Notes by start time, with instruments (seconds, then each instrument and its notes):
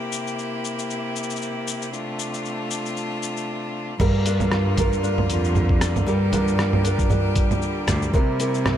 Already playing: string quartet C3 A#3 E4 G4
0.12 cabasa
0.27 cabasa
0.39 cabasa
0.65 cabasa
0.79 cabasa
0.90 cabasa
1.16 cabasa
1.23 cabasa
1.30 cabasa
1.36 cabasa
1.42 cabasa
1.68 cabasa
1.82 cabasa
1.93 string quartet A3 D4 F4, cabasa
2.19 cabasa
2.34 cabasa
2.45 cabasa
2.71 cabasa
2.86 cabasa
2.97 cabasa
3.23 cabasa
3.37 cabasa
3.99 cello G2, string quartet D3 G3 A#3 F4, steel-string acoustic guitar G3 A#4, kick, crash, low conga, cabasa
4.26 steel-string acoustic guitar D4 F4 A#4, closed hi-hat, cabasa
4.40 low conga, cabasa
4.51 steel-string acoustic guitar F4, cross-stick, cabasa
4.77 steel-string acoustic guitar D4 F4 A#4, kick, closed hi-hat, low conga, cabasa
4.93 cabasa
5.03 steel-string acoustic guitar D4, cabasa
5.18 low conga
5.29 cello F2, closed hi-hat, cabasa
5.44 cabasa
5.55 low conga, cabasa
5.69 kick
5.81 cross-stick, closed hi-hat, cabasa
5.96 low conga, cabasa
6.06 cello G2, steel-string acoustic guitar G3 A#4, string quartet G4, cabasa
6.32 steel-string acoustic guitar D4 F4 A#4, closed hi-hat, low conga, cabasa
6.48 cabasa
6.58 steel-string acoustic guitar F4, cross-stick, cabasa
6.73 low conga
6.84 steel-string acoustic guitar D4 F4 A#4, closed hi-hat, cabasa
6.99 kick, cabasa
7.09 steel-string acoustic guitar D4, low conga, cabasa
7.36 kick, closed hi-hat, cabasa
7.51 low conga, cabasa
7.62 cabasa
7.88 cello D2, cross-stick, closed hi-hat, low conga, cabasa
8.02 cabasa
8.14 steel-string acoustic guitar C3 A#4, string quartet C3 E4, cello C3, kick, cabasa
8.39 steel-string acoustic guitar C4 E4 A#4, closed hi-hat, cabasa
8.54 cabasa
8.65 steel-string acoustic guitar E4, cross-stick, low conga, cabasa